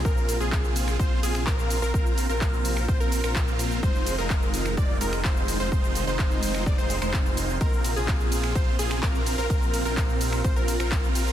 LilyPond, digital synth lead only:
\new Staff \with { instrumentName = "Digital synth lead" } { \time 4/4 \key f \dorian \tempo 4 = 127 bes'8. aes'4~ aes'16 c''8 aes'8 bes'8. bes'16 | bes'8. bes'4~ bes'16 c''16 bes'8 bes'4~ bes'16 | c''8. bes'4~ bes'16 d''8 bes'8 c''8. c''16 | c''8. c''4~ c''16 d''16 c''8 c''4~ c''16 |
bes'8. aes'4~ aes'16 c''8 aes'8 bes'8. bes'16 | bes'8. bes'4~ bes'16 c''16 bes'8 bes'4~ bes'16 | }